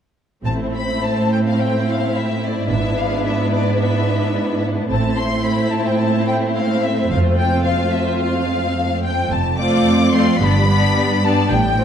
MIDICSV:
0, 0, Header, 1, 6, 480
1, 0, Start_track
1, 0, Key_signature, 0, "minor"
1, 0, Tempo, 569801
1, 382, Time_signature, 4, 2, 24, 8
1, 1337, Tempo, 551471
1, 10265, End_track
2, 0, Start_track
2, 0, Title_t, "Violin section"
2, 0, Program_c, 0, 48
2, 380, Note_on_c, 0, 81, 49
2, 447, Note_off_c, 0, 81, 0
2, 629, Note_on_c, 0, 83, 51
2, 861, Note_off_c, 0, 83, 0
2, 867, Note_on_c, 0, 81, 55
2, 1103, Note_off_c, 0, 81, 0
2, 1111, Note_on_c, 0, 79, 49
2, 1156, Note_off_c, 0, 79, 0
2, 1242, Note_on_c, 0, 77, 43
2, 1344, Note_on_c, 0, 79, 49
2, 1347, Note_off_c, 0, 77, 0
2, 1582, Note_off_c, 0, 79, 0
2, 1598, Note_on_c, 0, 77, 47
2, 1827, Note_off_c, 0, 77, 0
2, 1827, Note_on_c, 0, 76, 47
2, 2060, Note_off_c, 0, 76, 0
2, 2079, Note_on_c, 0, 74, 48
2, 2297, Note_on_c, 0, 76, 50
2, 2307, Note_off_c, 0, 74, 0
2, 2532, Note_off_c, 0, 76, 0
2, 2549, Note_on_c, 0, 77, 50
2, 2781, Note_on_c, 0, 76, 48
2, 2782, Note_off_c, 0, 77, 0
2, 3012, Note_off_c, 0, 76, 0
2, 3024, Note_on_c, 0, 74, 45
2, 3256, Note_off_c, 0, 74, 0
2, 3258, Note_on_c, 0, 76, 48
2, 3963, Note_off_c, 0, 76, 0
2, 4227, Note_on_c, 0, 81, 53
2, 4447, Note_off_c, 0, 81, 0
2, 4455, Note_on_c, 0, 84, 59
2, 4699, Note_on_c, 0, 83, 54
2, 4701, Note_off_c, 0, 84, 0
2, 4927, Note_on_c, 0, 81, 50
2, 4944, Note_off_c, 0, 83, 0
2, 5057, Note_off_c, 0, 81, 0
2, 5062, Note_on_c, 0, 79, 49
2, 5168, Note_on_c, 0, 81, 53
2, 5184, Note_off_c, 0, 79, 0
2, 5415, Note_off_c, 0, 81, 0
2, 5420, Note_on_c, 0, 79, 53
2, 5490, Note_off_c, 0, 79, 0
2, 5658, Note_on_c, 0, 77, 57
2, 5895, Note_off_c, 0, 77, 0
2, 5898, Note_on_c, 0, 76, 50
2, 6138, Note_on_c, 0, 77, 54
2, 6141, Note_off_c, 0, 76, 0
2, 6207, Note_off_c, 0, 77, 0
2, 6370, Note_on_c, 0, 79, 62
2, 6606, Note_on_c, 0, 77, 57
2, 6608, Note_off_c, 0, 79, 0
2, 6845, Note_off_c, 0, 77, 0
2, 6859, Note_on_c, 0, 76, 53
2, 7096, Note_off_c, 0, 76, 0
2, 7101, Note_on_c, 0, 77, 61
2, 7799, Note_off_c, 0, 77, 0
2, 7818, Note_on_c, 0, 79, 62
2, 8049, Note_off_c, 0, 79, 0
2, 8060, Note_on_c, 0, 81, 57
2, 8295, Note_on_c, 0, 86, 72
2, 8296, Note_off_c, 0, 81, 0
2, 8767, Note_off_c, 0, 86, 0
2, 8767, Note_on_c, 0, 84, 65
2, 9011, Note_on_c, 0, 83, 75
2, 9012, Note_off_c, 0, 84, 0
2, 9732, Note_off_c, 0, 83, 0
2, 9744, Note_on_c, 0, 81, 66
2, 9974, Note_on_c, 0, 79, 65
2, 9979, Note_off_c, 0, 81, 0
2, 10265, Note_off_c, 0, 79, 0
2, 10265, End_track
3, 0, Start_track
3, 0, Title_t, "Violin section"
3, 0, Program_c, 1, 48
3, 383, Note_on_c, 1, 64, 42
3, 383, Note_on_c, 1, 72, 40
3, 2260, Note_off_c, 1, 72, 0
3, 2289, Note_on_c, 1, 71, 39
3, 4179, Note_off_c, 1, 71, 0
3, 4182, Note_off_c, 1, 64, 0
3, 4223, Note_on_c, 1, 72, 44
3, 4226, Note_on_c, 1, 64, 45
3, 6113, Note_off_c, 1, 64, 0
3, 6154, Note_on_c, 1, 65, 47
3, 8018, Note_off_c, 1, 72, 0
3, 8020, Note_off_c, 1, 65, 0
3, 8294, Note_on_c, 1, 74, 44
3, 8297, Note_on_c, 1, 65, 45
3, 8766, Note_off_c, 1, 74, 0
3, 8768, Note_off_c, 1, 65, 0
3, 8781, Note_on_c, 1, 74, 42
3, 8782, Note_on_c, 1, 65, 41
3, 9008, Note_off_c, 1, 74, 0
3, 9014, Note_off_c, 1, 65, 0
3, 9019, Note_on_c, 1, 62, 41
3, 9019, Note_on_c, 1, 74, 40
3, 9236, Note_off_c, 1, 62, 0
3, 9238, Note_off_c, 1, 74, 0
3, 9247, Note_on_c, 1, 62, 43
3, 9249, Note_on_c, 1, 74, 46
3, 9720, Note_off_c, 1, 62, 0
3, 9721, Note_off_c, 1, 74, 0
3, 9738, Note_on_c, 1, 74, 43
3, 9740, Note_on_c, 1, 62, 44
3, 9972, Note_off_c, 1, 74, 0
3, 9973, Note_off_c, 1, 62, 0
3, 10214, Note_on_c, 1, 72, 48
3, 10216, Note_on_c, 1, 65, 44
3, 10265, Note_off_c, 1, 65, 0
3, 10265, Note_off_c, 1, 72, 0
3, 10265, End_track
4, 0, Start_track
4, 0, Title_t, "Viola section"
4, 0, Program_c, 2, 48
4, 378, Note_on_c, 2, 60, 40
4, 379, Note_on_c, 2, 57, 39
4, 2258, Note_off_c, 2, 57, 0
4, 2258, Note_off_c, 2, 60, 0
4, 2295, Note_on_c, 2, 62, 41
4, 2298, Note_on_c, 2, 59, 40
4, 4182, Note_off_c, 2, 62, 0
4, 4183, Note_off_c, 2, 59, 0
4, 4211, Note_on_c, 2, 60, 44
4, 4215, Note_on_c, 2, 57, 42
4, 8012, Note_off_c, 2, 60, 0
4, 8014, Note_off_c, 2, 57, 0
4, 8294, Note_on_c, 2, 57, 44
4, 8295, Note_on_c, 2, 60, 44
4, 8767, Note_off_c, 2, 57, 0
4, 8767, Note_off_c, 2, 60, 0
4, 8778, Note_on_c, 2, 57, 39
4, 8781, Note_on_c, 2, 60, 42
4, 9011, Note_on_c, 2, 55, 42
4, 9012, Note_off_c, 2, 57, 0
4, 9012, Note_on_c, 2, 59, 44
4, 9014, Note_off_c, 2, 60, 0
4, 9248, Note_off_c, 2, 55, 0
4, 9249, Note_off_c, 2, 59, 0
4, 9261, Note_on_c, 2, 59, 43
4, 9263, Note_on_c, 2, 55, 44
4, 9727, Note_off_c, 2, 59, 0
4, 9729, Note_off_c, 2, 55, 0
4, 9739, Note_on_c, 2, 55, 39
4, 9742, Note_on_c, 2, 59, 42
4, 9972, Note_off_c, 2, 55, 0
4, 9974, Note_off_c, 2, 59, 0
4, 10219, Note_on_c, 2, 60, 45
4, 10222, Note_off_c, 2, 60, 0
4, 10222, Note_on_c, 2, 60, 47
4, 10265, Note_off_c, 2, 60, 0
4, 10265, End_track
5, 0, Start_track
5, 0, Title_t, "Cello section"
5, 0, Program_c, 3, 48
5, 379, Note_on_c, 3, 45, 38
5, 2258, Note_off_c, 3, 45, 0
5, 2294, Note_on_c, 3, 44, 40
5, 4181, Note_off_c, 3, 44, 0
5, 4221, Note_on_c, 3, 45, 42
5, 6111, Note_off_c, 3, 45, 0
5, 6146, Note_on_c, 3, 41, 45
5, 8016, Note_off_c, 3, 41, 0
5, 8051, Note_on_c, 3, 41, 52
5, 8477, Note_off_c, 3, 41, 0
5, 8531, Note_on_c, 3, 41, 54
5, 8957, Note_off_c, 3, 41, 0
5, 9016, Note_on_c, 3, 43, 54
5, 9439, Note_off_c, 3, 43, 0
5, 9494, Note_on_c, 3, 43, 54
5, 9917, Note_off_c, 3, 43, 0
5, 9974, Note_on_c, 3, 45, 57
5, 10265, Note_off_c, 3, 45, 0
5, 10265, End_track
6, 0, Start_track
6, 0, Title_t, "Double bass section"
6, 0, Program_c, 4, 48
6, 381, Note_on_c, 4, 33, 38
6, 829, Note_off_c, 4, 33, 0
6, 2304, Note_on_c, 4, 32, 37
6, 2746, Note_off_c, 4, 32, 0
6, 4225, Note_on_c, 4, 33, 39
6, 4673, Note_off_c, 4, 33, 0
6, 6146, Note_on_c, 4, 29, 45
6, 6588, Note_off_c, 4, 29, 0
6, 8050, Note_on_c, 4, 29, 51
6, 8455, Note_off_c, 4, 29, 0
6, 9021, Note_on_c, 4, 31, 53
6, 9420, Note_off_c, 4, 31, 0
6, 9976, Note_on_c, 4, 33, 54
6, 10265, Note_off_c, 4, 33, 0
6, 10265, End_track
0, 0, End_of_file